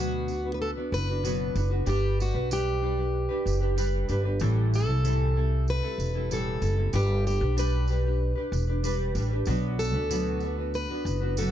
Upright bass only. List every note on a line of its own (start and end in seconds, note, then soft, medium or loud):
0.00 0.72 D2 medium
0.92 1.52 F#1 medium
1.55 1.85 F#1 medium
1.87 2.31 G1 medium
2.35 3.26 B1 medium
3.46 4.05 F#1 medium
4.09 4.38 G1 medium
4.41 4.88 A1 loud
4.88 5.79 C2 medium
5.98 6.58 E1 medium
6.62 6.91 F#1 medium
6.93 7.37 G1 loud
7.41 8.32 B1 medium
8.52 9.11 E1 medium
9.15 9.44 A1 medium
9.47 9.95 B1 loud
9.95 10.85 D2 medium
11.05 11.51 F#1 medium